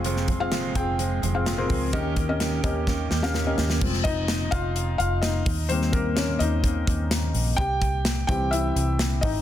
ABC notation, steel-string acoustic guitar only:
X:1
M:4/4
L:1/8
Q:1/4=128
K:Fm
V:1 name="Steel-string acoustic guitar"
[F,,C,F,A,CA] [F,A,A] [F,,C,F,A,CA] [F,A,] [F,A,CA] [F,A,CA] [F,,C,F,A,CA] [F,A,CA] | [E,B,DG] [B,DG] [E,B,DG] [B,DG] [E,B,DG] [B,DG] [E,B,DG] [B,DG] | z8 | z8 |
z8 |]